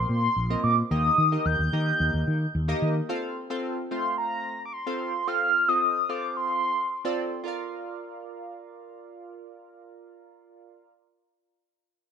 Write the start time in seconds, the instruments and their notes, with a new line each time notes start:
Already playing: synth keys A#3 C4 F4 A#4 C5
0.09 fretless electric bass A#2, soft synth lead C6
0.36 fretless electric bass A#1
0.50 synth keys A#3 C4 F4 A#4 D#5
0.64 fretless electric bass A#2, soft synth lead D6
0.91 fretless electric bass D#2, synth keys A#3 D#4 G4 A#4 D#5, soft synth lead D#6
1.18 fretless electric bass D#3
1.32 synth keys A#3 D#4 G4 A#4 D#5
1.46 fretless electric bass D#2, soft synth lead G6
1.59 fretless electric bass D#2
1.73 fretless electric bass D#3, synth keys A#3 D#4 G4 A#4 D#5
2.00 fretless electric bass D#2
2.14 fretless electric bass D#2
2.27 fretless electric bass D#3
2.55 fretless electric bass D#2
2.68 synth keys A#3 D#4 G4 A#4 D#5
2.82 fretless electric bass D#3
3.09 synth keys C4 F4 A4 C5 F5
3.50 synth keys C4 F4 A4 C5 F5
3.91 synth keys A3 C4 F4 C5 F5, soft synth lead C6
4.18 soft synth lead A#5
4.66 soft synth lead D6
4.73 soft synth lead C6
4.86 synth keys C4 F4 A4 C5 F5
5.27 synth keys C4 F4 A4 C5 F5, soft synth lead F6
5.68 synth keys C4 F4 A4 C5 D#5, soft synth lead D#6
6.09 synth keys C4 F4 A4 C5 F5, soft synth lead D6
6.37 soft synth lead C6
7.05 synth keys C4 F4 A4 C5 D5
7.44 synth keys F4 A#4 D5
7.48 synth keys F5